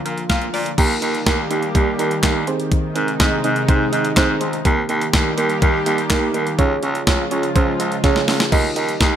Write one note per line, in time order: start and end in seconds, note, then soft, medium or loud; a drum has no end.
0.00 0.74 D3 medium
0.00 0.74 F3 medium
0.00 0.74 A#3 medium
0.00 0.74 F4 medium
0.05 0.22 A#2 medium
0.05 0.22 A#3 medium
0.05 closed hi-hat medium
0.18 closed hi-hat medium
0.30 0.47 A#2 loud
0.30 0.46 F5 medium
0.30 kick loud
0.30 snare loud
0.30 closed hi-hat medium
0.41 closed hi-hat soft
0.54 0.71 A#2 loud
0.54 0.70 D5 medium
0.54 open hi-hat medium
0.66 closed hi-hat medium
0.78 0.95 D#2 loud
0.78 4.61 D#3 medium
0.78 2.46 G3 medium
0.78 2.46 A#3 medium
0.78 0.92 A#3 loud
0.78 0.92 D#4 loud
0.78 2.46 G4 medium
0.78 0.92 G4 loud
0.78 0.92 A#4 loud
0.78 kick loud
0.78 closed hi-hat medium
0.78 crash loud
1.02 1.19 D#2 loud
1.02 1.16 A#3 medium
1.02 1.16 D#4 medium
1.02 1.16 G4 medium
1.02 1.16 A#4 loud
1.02 closed hi-hat medium
1.15 closed hi-hat medium
1.26 1.43 D#2 loud
1.26 1.40 A#3 medium
1.26 1.40 D#4 medium
1.26 1.40 G4 medium
1.26 1.40 A#4 loud
1.26 kick loud
1.26 snare loud
1.26 closed hi-hat medium
1.50 1.68 D#2 loud
1.50 1.64 A#3 medium
1.50 1.64 D#4 medium
1.50 1.64 G4 medium
1.50 1.64 A#4 loud
1.50 closed hi-hat medium
1.63 closed hi-hat medium
1.75 1.92 D#2 loud
1.75 1.88 A#3 loud
1.75 1.88 D#4 loud
1.75 1.88 G4 loud
1.75 1.88 A#4 loud
1.75 kick loud
1.75 closed hi-hat medium
1.99 2.16 D#2 loud
1.99 2.13 A#3 medium
1.99 2.13 D#4 medium
1.99 2.13 G4 medium
1.99 2.13 A#4 loud
1.99 closed hi-hat medium
2.11 closed hi-hat medium
2.23 2.47 D#2 loud
2.23 2.37 A#3 loud
2.23 2.37 D#4 loud
2.23 2.37 G4 loud
2.23 2.37 A#4 loud
2.23 kick loud
2.23 snare loud
2.23 clap loud
2.23 closed hi-hat medium
2.47 4.63 C3 medium
2.47 4.63 G#3 medium
2.47 2.86 C4 medium
2.47 4.63 D#4 medium
2.47 2.86 D#4 medium
2.47 2.86 G#4 medium
2.47 2.86 C5 loud
2.47 closed hi-hat medium
2.60 closed hi-hat medium
2.72 kick loud
2.72 closed hi-hat medium
2.96 3.13 G#2 loud
2.96 3.09 C4 medium
2.96 3.09 D#4 medium
2.96 3.09 G#4 medium
2.96 3.09 A#4 loud
2.96 closed hi-hat medium
3.08 closed hi-hat medium
3.20 3.37 G#2 loud
3.20 3.34 C4 medium
3.20 3.34 D#4 medium
3.20 3.34 G#4 medium
3.20 3.34 D#5 loud
3.20 kick loud
3.20 snare loud
3.20 closed hi-hat medium
3.44 3.61 G#2 loud
3.44 3.58 C4 medium
3.44 3.58 D#4 medium
3.44 3.58 G#4 medium
3.44 3.58 D#5 loud
3.44 closed hi-hat medium
3.56 closed hi-hat medium
3.68 3.85 G#2 loud
3.68 3.82 C4 loud
3.68 3.82 D#4 loud
3.68 3.82 G#4 loud
3.68 3.82 C5 loud
3.68 kick loud
3.68 closed hi-hat medium
3.93 4.10 G#2 loud
3.93 4.06 C4 medium
3.93 4.06 D#4 medium
3.93 4.06 G#4 medium
3.93 4.06 D#5 medium
3.93 closed hi-hat medium
4.05 closed hi-hat medium
4.17 4.34 G#2 loud
4.17 4.30 C4 loud
4.17 4.30 D#4 loud
4.17 4.30 G#4 loud
4.17 4.30 C5 loud
4.17 kick loud
4.17 snare loud
4.17 clap loud
4.17 closed hi-hat medium
4.41 4.58 C#2 loud
4.41 4.55 C4 medium
4.41 4.55 D#4 medium
4.41 4.55 G#4 medium
4.41 4.55 C5 medium
4.41 closed hi-hat medium
4.53 closed hi-hat medium
4.65 4.82 D#2 loud
4.65 6.57 D#3 medium
4.65 6.57 G3 medium
4.65 4.79 A#3 loud
4.65 6.57 A#3 medium
4.65 4.79 D#4 loud
4.65 4.79 G4 loud
4.65 6.57 G4 medium
4.65 4.79 A#4 loud
4.65 kick loud
4.65 closed hi-hat medium
4.89 5.06 D#2 loud
4.89 5.03 A#3 medium
4.89 5.03 D#4 medium
4.89 5.03 G4 medium
4.89 5.03 A#4 loud
4.89 closed hi-hat medium
5.01 closed hi-hat medium
5.13 5.30 D#2 loud
5.13 5.27 A#3 medium
5.13 5.27 D#4 medium
5.13 5.27 G4 medium
5.13 5.27 A#4 loud
5.13 kick loud
5.13 snare loud
5.13 closed hi-hat medium
5.38 5.55 D#2 loud
5.38 5.51 A#3 medium
5.38 5.51 D#4 medium
5.38 5.51 G4 medium
5.38 5.51 A#4 loud
5.38 closed hi-hat medium
5.50 closed hi-hat medium
5.62 5.79 D#2 loud
5.62 5.76 A#3 loud
5.62 5.76 D#4 loud
5.62 5.76 G4 loud
5.62 5.76 A#4 loud
5.62 kick loud
5.62 closed hi-hat medium
5.86 6.03 D#2 loud
5.86 6.00 A#3 medium
5.86 6.00 D#4 medium
5.86 6.00 G4 medium
5.86 6.00 A#4 medium
5.86 closed hi-hat medium
5.98 closed hi-hat medium
6.10 6.27 D#2 loud
6.10 6.24 A#3 loud
6.10 6.24 D#4 loud
6.10 6.24 G4 loud
6.10 6.24 A#4 loud
6.10 kick loud
6.10 snare loud
6.10 clap loud
6.10 closed hi-hat medium
6.34 6.51 D#2 loud
6.34 6.48 A#3 medium
6.34 6.48 D#4 medium
6.34 6.48 G4 medium
6.34 6.48 A#4 medium
6.34 closed hi-hat medium
6.47 closed hi-hat medium
6.59 6.76 C#2 loud
6.59 8.50 C#3 medium
6.59 8.50 F3 medium
6.59 8.50 G#3 medium
6.59 6.72 C#4 loud
6.59 6.72 F4 loud
6.59 8.50 F4 medium
6.59 6.72 G#4 loud
6.59 6.72 C#5 loud
6.59 kick loud
6.59 closed hi-hat medium
6.83 7.00 C#2 loud
6.83 6.97 C#4 medium
6.83 6.97 F4 medium
6.83 6.97 G#4 medium
6.83 6.97 C#5 loud
6.83 closed hi-hat medium
6.95 closed hi-hat medium
7.07 7.24 C#2 loud
7.07 7.21 C#4 medium
7.07 7.21 F4 medium
7.07 7.21 G#4 medium
7.07 7.21 C#5 loud
7.07 kick loud
7.07 snare loud
7.07 closed hi-hat medium
7.31 7.48 C#2 loud
7.31 7.45 C#4 medium
7.31 7.45 F4 medium
7.31 7.45 G#4 medium
7.31 7.45 C#5 loud
7.31 closed hi-hat medium
7.43 closed hi-hat medium
7.55 7.72 C#2 loud
7.55 7.69 C#4 loud
7.55 7.69 F4 loud
7.55 7.69 G#4 loud
7.55 7.69 C5 loud
7.55 kick loud
7.55 closed hi-hat medium
7.80 7.97 C#2 loud
7.80 7.93 C#4 medium
7.80 7.93 F4 medium
7.80 7.93 G#4 medium
7.80 7.93 D#5 loud
7.80 closed hi-hat medium
7.92 closed hi-hat medium
8.04 8.21 C#2 loud
8.04 8.18 C#4 loud
8.04 8.18 F4 loud
8.04 8.18 G#4 loud
8.04 8.18 C#5 loud
8.04 kick loud
8.04 snare medium
8.04 closed hi-hat medium
8.16 snare medium
8.28 8.45 C#2 medium
8.28 8.42 C#4 medium
8.28 8.42 F4 medium
8.28 8.42 G#4 medium
8.28 8.42 C#5 medium
8.28 snare loud
8.28 open hi-hat medium
8.40 snare loud
8.40 closed hi-hat medium
8.52 8.69 D#2 loud
8.52 9.16 D#3 medium
8.52 9.16 G3 medium
8.52 9.16 A#3 medium
8.52 8.66 D#4 loud
8.52 8.66 G4 loud
8.52 9.16 G4 medium
8.52 8.66 A#4 loud
8.52 8.66 D#5 loud
8.52 kick loud
8.52 crash medium
8.76 8.93 D#2 loud
8.76 8.90 D#4 medium
8.76 8.90 G4 medium
8.76 8.90 A#4 medium
8.76 8.90 D#5 loud
8.76 closed hi-hat medium
8.89 closed hi-hat medium
9.00 9.16 D#2 loud
9.00 9.14 D#4 medium
9.00 9.14 G4 medium
9.00 9.14 A#4 medium
9.00 9.14 D#5 loud
9.00 kick loud
9.00 snare loud
9.00 closed hi-hat medium